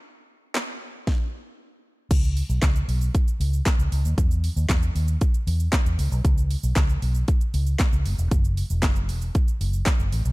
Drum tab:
CC |----------------|x---------------|----------------|----------------|
HH |----------------|x-o-x-o-x-o-x-o-|x-o-x-o-x-o-x-o-|x-o-x-o-x-o-x-o-|
SH |----------------|xxxxxxxxxxxxxxxx|xxxxxxxxxxxxxxxx|xxxxxxxxxxxxxxxx|
CP |----x-----------|----x-------x---|----x-------x---|----x-------x---|
SD |----o---o-------|----o-------o---|----o-------o---|----o-------o---|
BD |--------o-------|o---o---o---o---|o---o---o---o---|o---o---o---o---|

CC |----------------|
HH |x-o-x-o-x-o-x-o-|
SH |xxxxxxxxxxxxxxxx|
CP |----x-------x---|
SD |----o-------o---|
BD |o---o---o---o---|